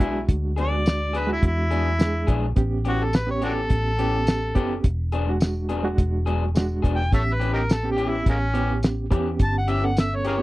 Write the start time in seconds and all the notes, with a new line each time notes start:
Already playing: E4
0.00 B1 F#3 G#3 B3 D4 F#4 G#4, kick, closed hi-hat
0.29 D2, kick, closed hi-hat
0.56 F#3 B3 D4 G#4, closed hi-hat
0.61 D5
0.71 G#3 D4 F#4
0.86 snare, closed hi-hat, tambourine
1.13 F#3 B3 D4 G#4, closed hi-hat
1.18 B4
1.27 G#3 D4 F#4
1.32 E4
1.43 E2, kick, closed hi-hat
1.47 E4
1.71 F#3 B3 D4 G#4, closed hi-hat
1.99 G#3 D4 G#4, snare, closed hi-hat, tambourine
2.27 A#1 F#3 B3 D4 G#4, kick, closed hi-hat
2.56 A1 B3 C#4 G4, kick, closed hi-hat
2.85 E3 B3 C#4 G4, closed hi-hat
2.89 F#4
3.04 A4
3.13 B4, snare, closed hi-hat, tambourine
3.27 B3 C#4 G4 C#5
3.42 E3 B3 C#4 D4 F#4 G4 A4, closed hi-hat
3.70 A1, kick, closed hi-hat
3.98 E3 B3 C#4 G4, closed hi-hat
4.27 snare, closed hi-hat, tambourine
4.55 F#1 E3 B3 C#4 G4, kick, closed hi-hat
4.84 E1, kick, closed hi-hat
5.12 F#3 B3 D4 G#4, closed hi-hat
5.27 G#3 D4 F#4
5.40 snare, closed hi-hat, tambourine
5.69 F#3 B3 D4 G#4, closed hi-hat
5.83 G#3 D4 F#4
5.98 E1, kick, closed hi-hat
6.26 F#3 B3 D4 G#4, closed hi-hat
6.55 G#3 D4 F#4, snare, closed hi-hat, tambourine
6.82 E1 F#3 B3 D4 G#4, kick, closed hi-hat
6.96 G5
7.01 snare
7.12 A1 B3 C#4 G4 A4 C#5 E5, kick, closed hi-hat
7.34 B4
7.40 E3 B3 C#4 G4, closed hi-hat
7.53 D#4 G4 A#4
7.69 A4, snare, closed hi-hat, tambourine
7.83 B3 C#4 G4
7.91 G4
7.97 E3 B3 C#4 G4, closed hi-hat
8.10 E4
8.26 A1 G#3 A#3 C#4, kick, closed hi-hat
8.53 E3 B3 C#4 G4, closed hi-hat
8.83 snare, closed hi-hat, tambourine
9.10 E2 E3 B3 C#4 G4, kick, closed hi-hat
9.39 G1 A5, kick, closed hi-hat
9.58 F#5
9.68 E3 B3 C#4 G4 E5, closed hi-hat
9.82 B3 C#4 A4 F#5
9.97 E5, snare, closed hi-hat, tambourine
10.15 C#5
10.25 E3 B3 C#4 G4 G#4 A#4 C#5, closed hi-hat
10.38 B3